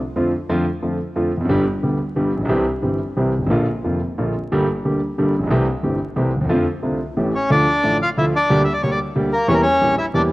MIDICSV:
0, 0, Header, 1, 3, 480
1, 0, Start_track
1, 0, Tempo, 335008
1, 715, Time_signature, 3, 2, 24, 8
1, 5997, Tempo, 330579
1, 14910, End_track
2, 0, Start_track
2, 0, Title_t, "Bandoneon"
2, 0, Program_c, 0, 23
2, 10593, Note_on_c, 0, 73, 71
2, 10597, Note_on_c, 0, 61, 52
2, 10811, Note_off_c, 0, 73, 0
2, 10813, Note_off_c, 0, 61, 0
2, 10826, Note_on_c, 0, 74, 96
2, 10832, Note_on_c, 0, 62, 69
2, 11496, Note_off_c, 0, 74, 0
2, 11499, Note_off_c, 0, 62, 0
2, 11567, Note_on_c, 0, 65, 69
2, 11568, Note_on_c, 0, 77, 93
2, 11671, Note_off_c, 0, 65, 0
2, 11671, Note_off_c, 0, 77, 0
2, 11793, Note_on_c, 0, 64, 61
2, 11798, Note_on_c, 0, 76, 81
2, 11900, Note_off_c, 0, 64, 0
2, 11903, Note_off_c, 0, 76, 0
2, 12051, Note_on_c, 0, 62, 70
2, 12055, Note_on_c, 0, 74, 85
2, 12442, Note_off_c, 0, 62, 0
2, 12444, Note_off_c, 0, 74, 0
2, 12473, Note_on_c, 0, 76, 68
2, 12594, Note_off_c, 0, 76, 0
2, 12600, Note_on_c, 0, 74, 79
2, 12722, Note_off_c, 0, 74, 0
2, 12734, Note_on_c, 0, 73, 75
2, 12853, Note_off_c, 0, 73, 0
2, 12858, Note_on_c, 0, 74, 77
2, 12980, Note_off_c, 0, 74, 0
2, 13464, Note_on_c, 0, 70, 83
2, 13474, Note_on_c, 0, 58, 67
2, 13676, Note_off_c, 0, 70, 0
2, 13682, Note_off_c, 0, 58, 0
2, 13689, Note_on_c, 0, 73, 97
2, 13707, Note_on_c, 0, 61, 88
2, 13778, Note_off_c, 0, 73, 0
2, 13781, Note_on_c, 0, 70, 87
2, 13788, Note_off_c, 0, 61, 0
2, 13881, Note_off_c, 0, 70, 0
2, 13893, Note_on_c, 0, 73, 107
2, 13901, Note_on_c, 0, 61, 82
2, 14366, Note_off_c, 0, 73, 0
2, 14370, Note_off_c, 0, 61, 0
2, 14416, Note_on_c, 0, 76, 88
2, 14426, Note_on_c, 0, 64, 72
2, 14519, Note_off_c, 0, 76, 0
2, 14527, Note_off_c, 0, 64, 0
2, 14652, Note_on_c, 0, 74, 94
2, 14657, Note_on_c, 0, 62, 73
2, 14757, Note_off_c, 0, 74, 0
2, 14761, Note_off_c, 0, 62, 0
2, 14910, End_track
3, 0, Start_track
3, 0, Title_t, "Grand piano"
3, 0, Program_c, 1, 0
3, 227, Note_on_c, 1, 50, 48
3, 228, Note_on_c, 1, 41, 60
3, 229, Note_on_c, 1, 57, 46
3, 229, Note_on_c, 1, 60, 46
3, 234, Note_on_c, 1, 53, 59
3, 234, Note_on_c, 1, 65, 57
3, 433, Note_off_c, 1, 41, 0
3, 433, Note_off_c, 1, 50, 0
3, 434, Note_off_c, 1, 57, 0
3, 434, Note_off_c, 1, 60, 0
3, 436, Note_off_c, 1, 53, 0
3, 436, Note_off_c, 1, 65, 0
3, 707, Note_on_c, 1, 50, 63
3, 708, Note_on_c, 1, 41, 80
3, 708, Note_on_c, 1, 53, 90
3, 713, Note_on_c, 1, 65, 79
3, 715, Note_on_c, 1, 57, 61
3, 911, Note_off_c, 1, 50, 0
3, 913, Note_off_c, 1, 41, 0
3, 913, Note_off_c, 1, 53, 0
3, 914, Note_off_c, 1, 65, 0
3, 915, Note_off_c, 1, 57, 0
3, 1178, Note_on_c, 1, 50, 40
3, 1180, Note_on_c, 1, 41, 50
3, 1180, Note_on_c, 1, 53, 50
3, 1184, Note_on_c, 1, 65, 45
3, 1186, Note_on_c, 1, 57, 42
3, 1384, Note_off_c, 1, 50, 0
3, 1386, Note_off_c, 1, 41, 0
3, 1387, Note_off_c, 1, 53, 0
3, 1387, Note_off_c, 1, 65, 0
3, 1388, Note_off_c, 1, 57, 0
3, 1657, Note_on_c, 1, 41, 64
3, 1659, Note_on_c, 1, 50, 47
3, 1663, Note_on_c, 1, 53, 61
3, 1667, Note_on_c, 1, 57, 47
3, 1669, Note_on_c, 1, 65, 60
3, 1865, Note_off_c, 1, 50, 0
3, 1868, Note_off_c, 1, 41, 0
3, 1868, Note_off_c, 1, 53, 0
3, 1869, Note_off_c, 1, 57, 0
3, 1870, Note_off_c, 1, 65, 0
3, 1968, Note_on_c, 1, 40, 48
3, 2016, Note_on_c, 1, 41, 63
3, 2027, Note_off_c, 1, 40, 0
3, 2078, Note_on_c, 1, 42, 69
3, 2080, Note_off_c, 1, 41, 0
3, 2134, Note_on_c, 1, 50, 76
3, 2136, Note_on_c, 1, 55, 68
3, 2138, Note_on_c, 1, 31, 89
3, 2141, Note_off_c, 1, 42, 0
3, 2141, Note_on_c, 1, 59, 65
3, 2142, Note_on_c, 1, 43, 91
3, 2143, Note_on_c, 1, 67, 84
3, 2338, Note_off_c, 1, 50, 0
3, 2339, Note_off_c, 1, 55, 0
3, 2340, Note_off_c, 1, 31, 0
3, 2341, Note_off_c, 1, 59, 0
3, 2342, Note_off_c, 1, 43, 0
3, 2342, Note_off_c, 1, 67, 0
3, 2617, Note_on_c, 1, 50, 56
3, 2622, Note_on_c, 1, 55, 40
3, 2623, Note_on_c, 1, 59, 43
3, 2626, Note_on_c, 1, 38, 51
3, 2626, Note_on_c, 1, 67, 49
3, 2821, Note_off_c, 1, 55, 0
3, 2822, Note_off_c, 1, 50, 0
3, 2822, Note_off_c, 1, 59, 0
3, 2823, Note_off_c, 1, 38, 0
3, 2823, Note_off_c, 1, 67, 0
3, 3093, Note_on_c, 1, 50, 52
3, 3095, Note_on_c, 1, 31, 62
3, 3096, Note_on_c, 1, 43, 63
3, 3098, Note_on_c, 1, 59, 47
3, 3099, Note_on_c, 1, 55, 45
3, 3100, Note_on_c, 1, 67, 56
3, 3297, Note_off_c, 1, 50, 0
3, 3298, Note_off_c, 1, 31, 0
3, 3298, Note_off_c, 1, 43, 0
3, 3299, Note_off_c, 1, 55, 0
3, 3299, Note_off_c, 1, 59, 0
3, 3300, Note_off_c, 1, 67, 0
3, 3394, Note_on_c, 1, 33, 51
3, 3446, Note_on_c, 1, 34, 53
3, 3455, Note_off_c, 1, 33, 0
3, 3511, Note_off_c, 1, 34, 0
3, 3512, Note_on_c, 1, 35, 72
3, 3563, Note_on_c, 1, 52, 74
3, 3565, Note_on_c, 1, 55, 62
3, 3567, Note_on_c, 1, 48, 86
3, 3568, Note_on_c, 1, 36, 83
3, 3568, Note_on_c, 1, 60, 62
3, 3570, Note_on_c, 1, 67, 86
3, 3574, Note_off_c, 1, 35, 0
3, 3771, Note_off_c, 1, 52, 0
3, 3772, Note_off_c, 1, 55, 0
3, 3773, Note_off_c, 1, 48, 0
3, 3773, Note_off_c, 1, 60, 0
3, 3774, Note_off_c, 1, 36, 0
3, 3774, Note_off_c, 1, 67, 0
3, 4043, Note_on_c, 1, 52, 41
3, 4049, Note_on_c, 1, 43, 46
3, 4049, Note_on_c, 1, 55, 38
3, 4051, Note_on_c, 1, 60, 37
3, 4054, Note_on_c, 1, 31, 44
3, 4057, Note_on_c, 1, 67, 44
3, 4254, Note_off_c, 1, 52, 0
3, 4257, Note_off_c, 1, 43, 0
3, 4257, Note_off_c, 1, 55, 0
3, 4258, Note_off_c, 1, 60, 0
3, 4259, Note_off_c, 1, 31, 0
3, 4261, Note_off_c, 1, 67, 0
3, 4536, Note_on_c, 1, 52, 53
3, 4538, Note_on_c, 1, 36, 59
3, 4538, Note_on_c, 1, 55, 46
3, 4543, Note_on_c, 1, 48, 57
3, 4543, Note_on_c, 1, 60, 46
3, 4547, Note_on_c, 1, 67, 53
3, 4745, Note_off_c, 1, 52, 0
3, 4746, Note_off_c, 1, 36, 0
3, 4746, Note_off_c, 1, 55, 0
3, 4749, Note_off_c, 1, 48, 0
3, 4749, Note_off_c, 1, 60, 0
3, 4751, Note_off_c, 1, 67, 0
3, 4844, Note_on_c, 1, 31, 43
3, 4907, Note_off_c, 1, 31, 0
3, 4909, Note_on_c, 1, 32, 47
3, 4965, Note_on_c, 1, 33, 67
3, 4970, Note_off_c, 1, 32, 0
3, 5018, Note_on_c, 1, 46, 80
3, 5019, Note_on_c, 1, 50, 68
3, 5021, Note_on_c, 1, 34, 80
3, 5021, Note_on_c, 1, 53, 59
3, 5022, Note_on_c, 1, 58, 62
3, 5028, Note_off_c, 1, 33, 0
3, 5028, Note_on_c, 1, 65, 75
3, 5227, Note_off_c, 1, 46, 0
3, 5227, Note_off_c, 1, 50, 0
3, 5228, Note_off_c, 1, 53, 0
3, 5229, Note_off_c, 1, 34, 0
3, 5229, Note_off_c, 1, 58, 0
3, 5232, Note_off_c, 1, 65, 0
3, 5507, Note_on_c, 1, 50, 43
3, 5508, Note_on_c, 1, 41, 51
3, 5508, Note_on_c, 1, 53, 40
3, 5510, Note_on_c, 1, 58, 39
3, 5513, Note_on_c, 1, 29, 48
3, 5515, Note_on_c, 1, 65, 48
3, 5714, Note_off_c, 1, 41, 0
3, 5714, Note_off_c, 1, 50, 0
3, 5714, Note_off_c, 1, 53, 0
3, 5715, Note_off_c, 1, 58, 0
3, 5717, Note_off_c, 1, 29, 0
3, 5718, Note_off_c, 1, 65, 0
3, 5990, Note_on_c, 1, 50, 52
3, 5992, Note_on_c, 1, 46, 61
3, 5992, Note_on_c, 1, 53, 45
3, 5995, Note_on_c, 1, 34, 64
3, 5997, Note_on_c, 1, 58, 48
3, 6000, Note_on_c, 1, 65, 54
3, 6197, Note_off_c, 1, 50, 0
3, 6198, Note_off_c, 1, 46, 0
3, 6198, Note_off_c, 1, 53, 0
3, 6199, Note_off_c, 1, 34, 0
3, 6200, Note_off_c, 1, 58, 0
3, 6202, Note_off_c, 1, 65, 0
3, 6478, Note_on_c, 1, 50, 75
3, 6483, Note_on_c, 1, 55, 66
3, 6484, Note_on_c, 1, 43, 94
3, 6485, Note_on_c, 1, 31, 83
3, 6486, Note_on_c, 1, 58, 60
3, 6490, Note_on_c, 1, 67, 80
3, 6680, Note_off_c, 1, 50, 0
3, 6683, Note_off_c, 1, 31, 0
3, 6683, Note_off_c, 1, 43, 0
3, 6683, Note_off_c, 1, 55, 0
3, 6684, Note_off_c, 1, 58, 0
3, 6686, Note_off_c, 1, 67, 0
3, 6961, Note_on_c, 1, 50, 56
3, 6964, Note_on_c, 1, 55, 43
3, 6965, Note_on_c, 1, 38, 50
3, 6965, Note_on_c, 1, 58, 44
3, 6970, Note_on_c, 1, 67, 56
3, 7163, Note_off_c, 1, 50, 0
3, 7164, Note_off_c, 1, 38, 0
3, 7164, Note_off_c, 1, 55, 0
3, 7164, Note_off_c, 1, 58, 0
3, 7166, Note_off_c, 1, 67, 0
3, 7440, Note_on_c, 1, 50, 61
3, 7444, Note_on_c, 1, 55, 53
3, 7447, Note_on_c, 1, 31, 62
3, 7448, Note_on_c, 1, 43, 72
3, 7449, Note_on_c, 1, 58, 52
3, 7451, Note_on_c, 1, 67, 61
3, 7639, Note_off_c, 1, 50, 0
3, 7641, Note_off_c, 1, 55, 0
3, 7642, Note_off_c, 1, 31, 0
3, 7643, Note_off_c, 1, 43, 0
3, 7643, Note_off_c, 1, 58, 0
3, 7645, Note_off_c, 1, 67, 0
3, 7747, Note_on_c, 1, 33, 54
3, 7801, Note_off_c, 1, 33, 0
3, 7809, Note_on_c, 1, 34, 63
3, 7861, Note_off_c, 1, 34, 0
3, 7862, Note_on_c, 1, 35, 69
3, 7911, Note_on_c, 1, 52, 76
3, 7913, Note_on_c, 1, 57, 68
3, 7914, Note_on_c, 1, 36, 94
3, 7918, Note_off_c, 1, 35, 0
3, 7918, Note_on_c, 1, 48, 84
3, 7919, Note_on_c, 1, 60, 68
3, 7924, Note_on_c, 1, 67, 81
3, 8112, Note_off_c, 1, 52, 0
3, 8113, Note_off_c, 1, 36, 0
3, 8113, Note_off_c, 1, 57, 0
3, 8115, Note_off_c, 1, 48, 0
3, 8115, Note_off_c, 1, 60, 0
3, 8118, Note_off_c, 1, 67, 0
3, 8384, Note_on_c, 1, 52, 46
3, 8390, Note_on_c, 1, 43, 54
3, 8390, Note_on_c, 1, 57, 41
3, 8391, Note_on_c, 1, 31, 55
3, 8392, Note_on_c, 1, 60, 44
3, 8395, Note_on_c, 1, 67, 54
3, 8586, Note_off_c, 1, 52, 0
3, 8589, Note_off_c, 1, 43, 0
3, 8590, Note_off_c, 1, 31, 0
3, 8590, Note_off_c, 1, 57, 0
3, 8591, Note_off_c, 1, 60, 0
3, 8592, Note_off_c, 1, 67, 0
3, 8863, Note_on_c, 1, 52, 56
3, 8864, Note_on_c, 1, 36, 65
3, 8865, Note_on_c, 1, 57, 51
3, 8869, Note_on_c, 1, 48, 64
3, 8869, Note_on_c, 1, 60, 49
3, 8871, Note_on_c, 1, 67, 63
3, 9067, Note_off_c, 1, 36, 0
3, 9067, Note_off_c, 1, 52, 0
3, 9067, Note_off_c, 1, 57, 0
3, 9070, Note_off_c, 1, 48, 0
3, 9070, Note_off_c, 1, 60, 0
3, 9071, Note_off_c, 1, 67, 0
3, 9165, Note_on_c, 1, 38, 46
3, 9227, Note_off_c, 1, 38, 0
3, 9227, Note_on_c, 1, 39, 59
3, 9282, Note_on_c, 1, 40, 62
3, 9288, Note_off_c, 1, 39, 0
3, 9342, Note_on_c, 1, 50, 70
3, 9345, Note_on_c, 1, 60, 62
3, 9346, Note_off_c, 1, 40, 0
3, 9346, Note_on_c, 1, 53, 81
3, 9346, Note_on_c, 1, 57, 71
3, 9350, Note_on_c, 1, 41, 85
3, 9351, Note_on_c, 1, 65, 81
3, 9551, Note_off_c, 1, 50, 0
3, 9552, Note_off_c, 1, 60, 0
3, 9553, Note_off_c, 1, 53, 0
3, 9553, Note_off_c, 1, 57, 0
3, 9555, Note_off_c, 1, 41, 0
3, 9556, Note_off_c, 1, 65, 0
3, 9830, Note_on_c, 1, 50, 47
3, 9832, Note_on_c, 1, 48, 48
3, 9833, Note_on_c, 1, 57, 37
3, 9834, Note_on_c, 1, 36, 53
3, 9835, Note_on_c, 1, 60, 38
3, 9839, Note_on_c, 1, 65, 43
3, 10040, Note_off_c, 1, 50, 0
3, 10041, Note_off_c, 1, 48, 0
3, 10042, Note_off_c, 1, 36, 0
3, 10042, Note_off_c, 1, 57, 0
3, 10042, Note_off_c, 1, 60, 0
3, 10045, Note_off_c, 1, 65, 0
3, 10326, Note_on_c, 1, 52, 47
3, 10326, Note_on_c, 1, 57, 47
3, 10328, Note_on_c, 1, 33, 52
3, 10328, Note_on_c, 1, 45, 59
3, 10330, Note_on_c, 1, 61, 42
3, 10333, Note_on_c, 1, 67, 58
3, 10534, Note_off_c, 1, 52, 0
3, 10534, Note_off_c, 1, 57, 0
3, 10536, Note_off_c, 1, 33, 0
3, 10536, Note_off_c, 1, 45, 0
3, 10537, Note_off_c, 1, 61, 0
3, 10538, Note_off_c, 1, 67, 0
3, 10811, Note_on_c, 1, 50, 88
3, 10812, Note_on_c, 1, 53, 67
3, 10814, Note_on_c, 1, 38, 93
3, 10815, Note_on_c, 1, 57, 59
3, 10821, Note_on_c, 1, 65, 76
3, 11018, Note_off_c, 1, 53, 0
3, 11019, Note_off_c, 1, 38, 0
3, 11020, Note_off_c, 1, 50, 0
3, 11020, Note_off_c, 1, 57, 0
3, 11023, Note_off_c, 1, 65, 0
3, 11295, Note_on_c, 1, 50, 48
3, 11298, Note_on_c, 1, 33, 51
3, 11298, Note_on_c, 1, 53, 40
3, 11299, Note_on_c, 1, 45, 50
3, 11303, Note_on_c, 1, 65, 51
3, 11304, Note_on_c, 1, 57, 40
3, 11501, Note_off_c, 1, 50, 0
3, 11502, Note_off_c, 1, 33, 0
3, 11503, Note_off_c, 1, 45, 0
3, 11503, Note_off_c, 1, 53, 0
3, 11505, Note_off_c, 1, 57, 0
3, 11505, Note_off_c, 1, 65, 0
3, 11786, Note_on_c, 1, 50, 69
3, 11789, Note_on_c, 1, 38, 61
3, 11789, Note_on_c, 1, 53, 52
3, 11791, Note_on_c, 1, 65, 61
3, 11795, Note_on_c, 1, 57, 49
3, 11988, Note_off_c, 1, 50, 0
3, 11989, Note_off_c, 1, 38, 0
3, 11989, Note_off_c, 1, 53, 0
3, 11990, Note_off_c, 1, 65, 0
3, 11992, Note_off_c, 1, 57, 0
3, 12261, Note_on_c, 1, 50, 91
3, 12263, Note_on_c, 1, 38, 97
3, 12263, Note_on_c, 1, 55, 71
3, 12266, Note_on_c, 1, 58, 66
3, 12268, Note_on_c, 1, 67, 86
3, 12461, Note_off_c, 1, 50, 0
3, 12461, Note_off_c, 1, 55, 0
3, 12462, Note_off_c, 1, 38, 0
3, 12463, Note_off_c, 1, 58, 0
3, 12464, Note_off_c, 1, 67, 0
3, 12740, Note_on_c, 1, 50, 53
3, 12743, Note_on_c, 1, 55, 47
3, 12747, Note_on_c, 1, 58, 42
3, 12748, Note_on_c, 1, 38, 55
3, 12750, Note_on_c, 1, 67, 56
3, 12938, Note_off_c, 1, 55, 0
3, 12940, Note_off_c, 1, 58, 0
3, 12941, Note_off_c, 1, 38, 0
3, 12941, Note_off_c, 1, 50, 0
3, 12942, Note_off_c, 1, 67, 0
3, 13211, Note_on_c, 1, 50, 70
3, 13217, Note_on_c, 1, 55, 54
3, 13217, Note_on_c, 1, 58, 55
3, 13219, Note_on_c, 1, 38, 66
3, 13223, Note_on_c, 1, 67, 66
3, 13412, Note_off_c, 1, 50, 0
3, 13412, Note_off_c, 1, 55, 0
3, 13412, Note_off_c, 1, 58, 0
3, 13414, Note_off_c, 1, 38, 0
3, 13416, Note_off_c, 1, 67, 0
3, 13687, Note_on_c, 1, 52, 89
3, 13693, Note_on_c, 1, 55, 66
3, 13695, Note_on_c, 1, 40, 92
3, 13695, Note_on_c, 1, 58, 73
3, 13698, Note_on_c, 1, 67, 81
3, 13887, Note_off_c, 1, 55, 0
3, 13888, Note_off_c, 1, 40, 0
3, 13888, Note_off_c, 1, 58, 0
3, 13889, Note_off_c, 1, 52, 0
3, 13889, Note_off_c, 1, 67, 0
3, 14167, Note_on_c, 1, 34, 51
3, 14167, Note_on_c, 1, 52, 45
3, 14168, Note_on_c, 1, 46, 54
3, 14169, Note_on_c, 1, 58, 39
3, 14170, Note_on_c, 1, 55, 39
3, 14174, Note_on_c, 1, 67, 58
3, 14362, Note_off_c, 1, 34, 0
3, 14362, Note_off_c, 1, 52, 0
3, 14363, Note_off_c, 1, 46, 0
3, 14363, Note_off_c, 1, 55, 0
3, 14363, Note_off_c, 1, 58, 0
3, 14366, Note_off_c, 1, 67, 0
3, 14642, Note_on_c, 1, 52, 65
3, 14647, Note_on_c, 1, 40, 66
3, 14647, Note_on_c, 1, 55, 50
3, 14647, Note_on_c, 1, 58, 52
3, 14652, Note_on_c, 1, 67, 61
3, 14843, Note_off_c, 1, 52, 0
3, 14844, Note_off_c, 1, 40, 0
3, 14844, Note_off_c, 1, 55, 0
3, 14844, Note_off_c, 1, 58, 0
3, 14846, Note_off_c, 1, 67, 0
3, 14910, End_track
0, 0, End_of_file